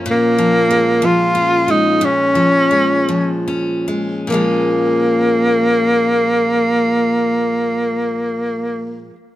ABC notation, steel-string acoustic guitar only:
X:1
M:6/8
L:1/8
Q:3/8=47
K:Bbm
V:1 name="Steel-string acoustic guitar" clef=bass
B,, F, A, F, D A, | B,, F, A, F, D A, | [B,,F,A,D]6- | [B,,F,A,D]6 |]